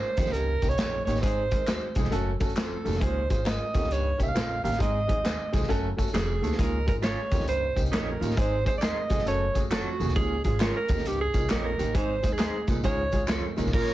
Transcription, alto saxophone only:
Already playing: C5
0.32 A#4
0.69 C#5
1.05 C#5
1.21 C5
2.57 A4
3.01 C5
3.31 C5
3.47 D#5
3.92 C#5
4.23 E5
4.29 F5
4.64 F5
4.82 D#5
6.14 G#4
6.59 A#4
6.89 A#4
7.04 C#5
7.49 C5
7.94 A#4
8.38 C5
8.67 C5
8.78 D5
8.82 D#5
9.28 C#5
9.72 F#4
10.16 G#4
10.45 G#4
10.62 A#4
10.77 A#4
11.08 G4
11.21 G#4
11.51 A#4
11.65 A#4
11.96 C5
12.33 G#4
12.85 C#5
13.75 A#4

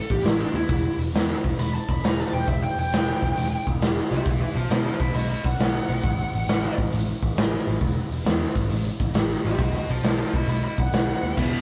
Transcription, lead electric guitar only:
Already playing: A4
0.10 G4
0.25 E4
0.40 D4
0.54 E4
1.59 B5
1.75 A5
1.90 B5
2.04 A#5
2.20 A5
2.33 G5
2.48 E5
2.63 G5
2.79 G5
4.11 G4 E5
4.26 B4 E5
4.41 B4 E5
4.55 C5 A5
4.71 C5 A5
4.86 C5 A5
5.00 D#5 B5
5.15 D#5 B5
5.30 D#5 B5
5.46 F#5
9.46 G4 E5
9.61 F#4 D#5
9.75 F#4 D#5
9.90 C5 A5
10.06 C5 A5
10.19 C5 A5
10.35 D#5 B5
10.49 D#5 B5
10.64 D#5 B5
10.80 F#5
11.37 E5

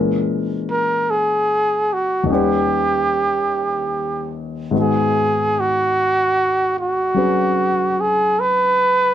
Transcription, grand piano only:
Already playing: A#2 E3 G#3 C#4 A#4
2.23 D#2 D#3
2.28 G3 C#4
2.33 B4 F#5
4.71 G#2 D#3 B3
4.75 F#4
7.14 F#3 C#4 G#4 B4

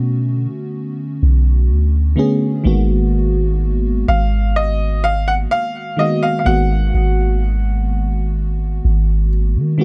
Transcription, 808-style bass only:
Already playing: B2
1.23 B1
1.70 D2
2.65 G#1
4.08 G#1
6.46 G#1
6.94 G#1
8.85 G#1
9.56 D#3

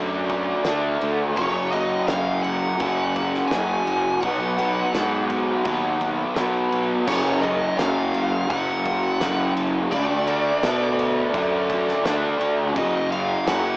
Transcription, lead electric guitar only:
1.37 C#5
1.72 D#5
2.07 F5
2.43 F#5
3.47 G#5
4.21 F#5
7.07 C#5
7.41 D#5
7.78 F5
8.50 F#5
9.92 D5
12.77 D#5
13.12 F5
13.48 F#5

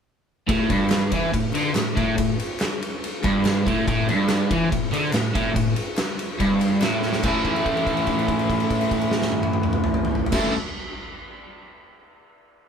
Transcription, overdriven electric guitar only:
0.48 A2
0.70 G2
1.12 E3
1.33 A2
1.54 D3
1.75 A2
1.96 A2
2.18 A2
3.23 G2
3.66 A2
3.87 A2
4.08 G2
4.51 E3
4.71 A2
4.93 D3
5.14 A2
5.35 A2
5.55 A2
6.39 G2
6.81 A2
7.24 A2 A3 C#4 E4 A4
10.32 A2 A3 C#4 E4 A4

